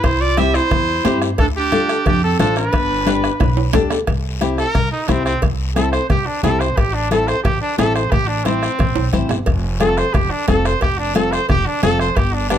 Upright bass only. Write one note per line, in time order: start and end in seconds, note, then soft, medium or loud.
0.04 0.58 C2 medium
0.71 0.98 E2 loud
1.05 1.32 G2 medium
1.39 1.92 D2 medium
2.06 2.33 F2 loud
2.39 2.66 A1 medium
2.74 3.27 G1 medium
3.41 3.67 B1 medium
3.74 4.01 D2 medium
4.08 4.62 C2 medium
4.75 4.89 C2 medium
5.09 5.36 C2 medium
5.43 5.97 C2 medium
6.10 6.23 C2 loud
6.43 6.70 C2 loud
6.78 7.31 A1 medium
7.45 7.58 A1 loud
7.79 8.06 A1 loud
8.12 8.66 A1 medium
8.79 8.93 A1 loud
8.96 9.11 B1 medium
9.13 9.29 A1 medium
9.30 9.45 G1 medium
9.47 10.01 F1 medium
10.15 10.28 F1 loud
10.48 10.75 F1 loud
10.82 11.36 F1 medium
11.49 11.63 F1 loud
11.83 12.10 F1 loud
12.17 12.58 G1 medium